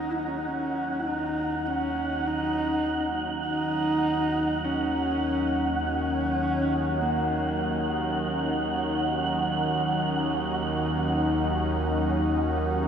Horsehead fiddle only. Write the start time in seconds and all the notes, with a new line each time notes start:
Already playing: D#4
0.10 E4
0.19 D#4
0.27 C#4
0.37 D#4
0.47 C#4
0.99 E4
1.07 D#4
1.67 C#4
2.27 D#4
3.47 D#4
4.64 C#4
5.83 C#4
7.01 A#3